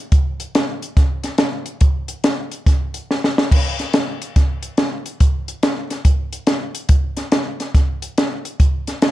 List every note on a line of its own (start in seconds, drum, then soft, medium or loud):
0.12 kick loud
0.12 closed hi-hat medium
0.40 closed hi-hat medium
0.55 snare loud
0.55 closed hi-hat medium
0.82 closed hi-hat medium
0.97 kick loud
0.97 snare soft
0.97 closed hi-hat medium
1.24 snare soft
1.24 closed hi-hat medium
1.38 snare loud
1.38 closed hi-hat medium
1.66 closed hi-hat medium
1.81 kick loud
1.81 closed hi-hat medium
2.08 closed hi-hat medium
2.24 snare medium
2.24 closed hi-hat medium
2.52 closed hi-hat medium
2.66 kick loud
2.66 snare soft
2.66 closed hi-hat medium
2.94 closed hi-hat medium
3.11 snare medium
3.24 snare medium
3.38 snare loud
3.52 kick loud
3.52 crash loud
3.79 snare soft
3.79 closed hi-hat medium
3.93 snare medium
3.93 closed hi-hat medium
4.22 closed hi-hat medium
4.36 kick loud
4.36 snare soft
4.36 closed hi-hat medium
4.63 closed hi-hat medium
4.77 snare medium
4.77 closed hi-hat medium
5.06 closed hi-hat medium
5.20 kick loud
5.20 closed hi-hat medium
5.48 closed hi-hat medium
5.63 snare loud
5.63 closed hi-hat medium
5.90 snare soft
5.90 closed hi-hat medium
6.05 kick loud
6.05 closed hi-hat medium
6.33 closed hi-hat medium
6.47 snare medium
6.47 closed hi-hat medium
6.75 closed hi-hat medium
6.89 kick loud
6.89 closed hi-hat medium
7.17 snare soft
7.17 closed hi-hat medium
7.32 snare loud
7.32 closed hi-hat medium
7.60 snare soft
7.60 closed hi-hat medium
7.75 kick loud
7.75 snare soft
7.75 closed hi-hat medium
8.02 closed hi-hat medium
8.18 snare medium
8.18 closed hi-hat medium
8.45 closed hi-hat medium
8.60 kick loud
8.60 closed hi-hat medium
8.87 snare soft
8.87 closed hi-hat medium
9.02 snare loud
9.02 closed hi-hat medium